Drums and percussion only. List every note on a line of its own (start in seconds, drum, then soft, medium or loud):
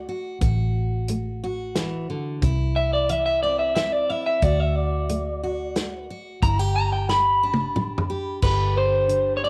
0.41 kick loud
0.41 closed hi-hat medium
1.08 closed hi-hat medium
1.75 snare medium
1.75 closed hi-hat medium
2.42 kick loud
2.42 closed hi-hat medium
3.09 closed hi-hat medium
3.76 snare medium
3.76 closed hi-hat medium
4.42 kick loud
4.42 closed hi-hat medium
5.09 closed hi-hat medium
5.76 snare medium
5.76 closed hi-hat medium
6.43 kick loud
6.43 closed hi-hat medium
7.09 snare medium
7.54 high tom medium
7.76 mid tom medium
7.98 mid tom medium
8.42 kick loud
8.42 crash medium
9.09 closed hi-hat medium